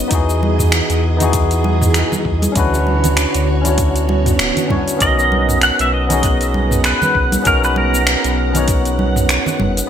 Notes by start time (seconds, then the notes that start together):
Already playing: B3 C#4 D#4 F#4 C#5 D#5
0.07 E2 E3 B3 D#4 E4 G#4, kick, closed hi-hat
0.12 F#4 G#4, cabasa
0.30 cabasa
0.43 high conga
0.59 mid tom, cabasa
0.72 finger snap, closed hi-hat, cabasa
0.90 E2, closed hi-hat, cabasa
1.17 B3 D#4 E4, closed hi-hat
1.21 F#4 G#4, low conga, cabasa
1.33 kick, closed hi-hat, cabasa
1.51 closed hi-hat, cabasa
1.64 high conga
1.82 mid tom, cabasa
1.94 finger snap, closed hi-hat, cabasa
2.12 high conga, low conga, cabasa
2.25 E2, kick
2.42 closed hi-hat, high conga, cabasa
2.52 D2 D3 C#4 D4 E4 F#4, kick, closed hi-hat
2.56 F#4 B4 C#5, cabasa
2.74 cabasa
2.87 high conga
3.04 closed hi-hat, low conga, cabasa
3.17 finger snap, closed hi-hat, cabasa
3.34 D2, closed hi-hat, cabasa
3.62 C#4 D4 E4, closed hi-hat, low conga
3.66 F#4 C#5, cabasa
3.78 kick, closed hi-hat, swell, cabasa
3.96 closed hi-hat, cabasa
4.09 high conga
4.26 closed hi-hat, mid tom, cabasa
4.39 D1, finger snap, closed hi-hat, cabasa
4.57 closed hi-hat, low conga, cabasa
4.68 C#4 D4 E4 F#4 C#5, kick, mid tom, high conga
4.88 closed hi-hat, cabasa
4.97 B1 B3 C#4 D#4, kick, closed hi-hat
5.01 B3 F#4 A#4 D#5 F#5, cabasa
5.19 cabasa
5.32 high conga
5.49 mid tom, cabasa
5.61 F#5, finger snap, closed hi-hat, cabasa
5.79 B1 E5, closed hi-hat, cabasa
5.94 D#5
6.07 B3 C#4 D#4, closed hi-hat, low conga
6.11 F#4 G#4, cabasa
6.23 kick, closed hi-hat, cabasa
6.41 closed hi-hat, cabasa
6.54 high conga
6.71 mid tom, cabasa
6.84 B4, finger snap, closed hi-hat, cabasa
7.02 high conga, low conga, cabasa
7.15 B1, kick
7.32 closed hi-hat, high conga, cabasa
7.42 B1 B3 C#4 D#4, kick, closed hi-hat, cabasa
7.47 F#4 A#4
7.64 B4, cabasa
7.76 A#4, high conga
7.95 cabasa
8.07 finger snap, closed hi-hat, cabasa
8.24 B1, closed hi-hat, cabasa
8.51 B3 C#4 D#4, closed hi-hat, low conga
8.56 F#4 C#5, cabasa
8.68 kick, closed hi-hat, cabasa
8.85 closed hi-hat, cabasa
8.99 high conga
9.16 mid tom, cabasa
9.29 finger snap, closed hi-hat, cabasa
9.46 low conga, cabasa
9.60 F#1, mid tom, high conga
9.77 closed hi-hat, cabasa